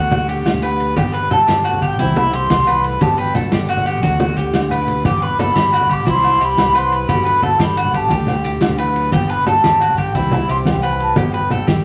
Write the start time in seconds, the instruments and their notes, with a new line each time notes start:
Already playing: fingered electric bass D2, nylon-string guitar D3 D4, clean electric guitar F#4, flute F#5
0.11 nylon-string guitar G4, ride, low conga, low agogo
0.29 fingered electric bass D2, clean electric guitar G4, nylon-string guitar G4, ride, maracas
0.37 maracas
0.46 fingered electric bass D2, nylon-string guitar G3, snare, ride, high conga, low agogo, maracas
0.54 low conga, maracas
0.62 nylon-string guitar G4, clean electric guitar B4, ride, low agogo, maracas
0.71 maracas
0.80 nylon-string guitar D4, ride
0.97 fingered electric bass G1, nylon-string guitar B3, clean electric guitar G4, flute G5, muted nylon-string guitar stroke, kick, ride, high conga, low conga, low agogo, maracas
1.05 maracas
1.13 nylon-string guitar B3, clean electric guitar B4, flute B5, ride
1.22 nylon-string guitar D4, low conga
1.30 fingered electric bass G1, nylon-string guitar G4, clean electric guitar A4, flute A5, ride, low conga, low agogo, maracas
1.40 low conga
1.48 fingered electric bass G1, nylon-string guitar G2, clean electric guitar G4, snare, ride, high conga
1.65 nylon-string guitar A2, clean electric guitar F#4, ride, low agogo, maracas
1.73 low conga
1.82 nylon-string guitar B2, clean electric guitar G4, flute G5, kick, ride, low conga, low agogo
1.91 maracas
1.99 fingered electric bass C2, nylon-string guitar C3 E3 G3 C4 E4, clean electric guitar E4, kick, ride, high conga, maracas
2.16 nylon-string guitar C4, flute B5, ride, low conga, low agogo
2.33 fingered electric bass C2, nylon-string guitar E4, clean electric guitar G4, flute C6, ride, maracas
2.43 maracas
2.49 fingered electric bass C2, nylon-string guitar C3, snare, ride, high conga, low agogo, maracas
2.59 low conga, maracas
2.67 nylon-string guitar B2, clean electric guitar B4, ride, low agogo, maracas
2.77 maracas
2.83 nylon-string guitar A2, flute B5, ride
3.01 fingered electric bass G1, nylon-string guitar G2 B3, clean electric guitar G4, flute A5, kick, ride, high conga, low conga, low agogo, maracas
3.18 nylon-string guitar D4, clean electric guitar B4, flute G5, ride, low conga, maracas
3.27 maracas
3.35 fingered electric bass G1, nylon-string guitar F#4, clean electric guitar A4, ride, low conga, low agogo, maracas
3.52 fingered electric bass G1, nylon-string guitar D3, clean electric guitar G4, flute F#5, snare, ride, high conga
3.61 maracas
3.68 nylon-string guitar B3, clean electric guitar F#4, ride, low conga, low agogo, maracas
3.77 nylon-string guitar D4, low conga, maracas
3.86 nylon-string guitar B3, clean electric guitar G4, ride, low conga, low agogo, maracas
3.96 maracas
4.03 fingered electric bass D2, nylon-string guitar D3 D4, clean electric guitar F#4, kick, ride, high conga, maracas
4.20 nylon-string guitar G4, ride, low conga, low agogo
4.29 low conga, maracas
4.37 fingered electric bass D2, clean electric guitar G4, nylon-string guitar G4, kick, ride, low conga, maracas
4.46 low conga
4.53 fingered electric bass D2, nylon-string guitar G3, snare, ride, high conga, low agogo, maracas
4.71 nylon-string guitar E4, clean electric guitar B4, ride, low conga, low agogo, maracas
4.80 nylon-string guitar G4, maracas
4.88 nylon-string guitar D4, ride, low conga
4.98 maracas
5.05 fingered electric bass G1, nylon-string guitar G2 B3, clean electric guitar G4, flute D6, kick, ride, high conga, low conga, low agogo, maracas
5.15 maracas
5.22 nylon-string guitar D4, clean electric guitar B4, flute B5, ride
5.31 low conga
5.39 fingered electric bass G1, nylon-string guitar F#4, clean electric guitar A4, flute B5, ride, low conga, low agogo, maracas
5.48 low conga
5.55 fingered electric bass G1, nylon-string guitar G2, clean electric guitar G4, snare, ride, high conga
5.73 nylon-string guitar A2, clean electric guitar F#4, ride, low agogo, maracas
5.81 low conga
5.90 nylon-string guitar B2, clean electric guitar G4, flute D6, kick, ride, low conga, low agogo
6.00 maracas
6.06 fingered electric bass C2, nylon-string guitar E3 G3, clean electric guitar E4, flute C6, muted nylon-string guitar stroke, kick, ride, high conga, maracas
6.10 nylon-string guitar C4 E4
6.24 nylon-string guitar C4, snare, ride, low agogo
6.41 fingered electric bass C2, nylon-string guitar E4, clean electric guitar G4, flute B5, ride, maracas
6.51 maracas
6.58 fingered electric bass C2, nylon-string guitar E3, snare, ride, high conga, low agogo, maracas
6.66 low conga
6.75 nylon-string guitar C4, clean electric guitar B4, flute C6, ride, low agogo, maracas
6.84 maracas
6.92 nylon-string guitar G3, flute B5, ride
7.09 fingered electric bass G1, nylon-string guitar G2 D3 B3 D4 F#4, clean electric guitar G4, kick, ride, high conga, low conga, low agogo, maracas
7.19 maracas
7.25 nylon-string guitar D4, clean electric guitar B4, ride
7.34 low conga
7.42 fingered electric bass G1, nylon-string guitar F#4, clean electric guitar A4, flute A5, ride, low conga, low agogo
7.51 low conga
7.59 fingered electric bass G1, nylon-string guitar D3, clean electric guitar G4, flute B5, snare, ride, high conga
7.77 nylon-string guitar D4, clean electric guitar F#4, ride, low agogo, maracas
7.85 low conga
7.93 nylon-string guitar B3, clean electric guitar G4, flute A5, kick, ride, low conga, low agogo
8.03 maracas
8.10 fingered electric bass D2, nylon-string guitar D3 D4, clean electric guitar G4, kick, ride, high conga, maracas
8.14 flute G5
8.27 nylon-string guitar G4, snare, ride, low conga, low agogo
8.44 fingered electric bass D2, nylon-string guitar E4, clean electric guitar G4, ride, maracas
8.53 nylon-string guitar G4, maracas
8.61 fingered electric bass D2, snare, ride, high conga, low agogo, maracas
8.69 low conga, maracas
8.78 nylon-string guitar E3, clean electric guitar B4, ride, low agogo, maracas
8.88 maracas
8.96 nylon-string guitar F#3, ride
9.12 fingered electric bass G1, nylon-string guitar G2 B3, clean electric guitar G4, flute G5, kick, ride, high conga, low conga, low agogo, maracas
9.29 nylon-string guitar D4, clean electric guitar B4, flute B5, ride
9.39 low conga
9.46 fingered electric bass G1, nylon-string guitar G4, clean electric guitar A4, flute A5, ride, low conga, low agogo, maracas
9.55 low conga
9.63 fingered electric bass G1, nylon-string guitar D3, clean electric guitar G4, snare, ride, high conga
9.80 nylon-string guitar D4, clean electric guitar F#4, ride, low agogo, maracas
9.89 low conga
9.98 clean electric guitar G4, flute G5, kick, ride, low conga, low agogo
10.07 maracas
10.15 fingered electric bass C2, nylon-string guitar C3 E3 G3 C4 E4, clean electric guitar E4, kick, ride, high conga, maracas
10.31 nylon-string guitar C4, flute B5, snare, ride, low conga, low agogo
10.49 fingered electric bass C2, nylon-string guitar E4, clean electric guitar G4, flute C6, ride, maracas
10.57 maracas
10.65 fingered electric bass C2, nylon-string guitar E3, flute G5, snare, ride, high conga, low agogo, maracas
10.74 low conga, maracas
10.83 nylon-string guitar C4, clean electric guitar B4, ride, low agogo, maracas
10.92 flute B5, maracas
11.00 nylon-string guitar G3, flute A5, ride
11.16 fingered electric bass G1, nylon-string guitar G2 B3, clean electric guitar G4, flute G5, kick, ride, high conga, low conga, low agogo, maracas
11.26 low conga
11.33 nylon-string guitar D4, clean electric guitar B4, ride
11.50 fingered electric bass G1, nylon-string guitar G4, clean electric guitar A4, ride, low conga, low agogo, maracas
11.67 fingered electric bass G1, nylon-string guitar D3, clean electric guitar G4, snare, ride, high conga, maracas
11.77 low conga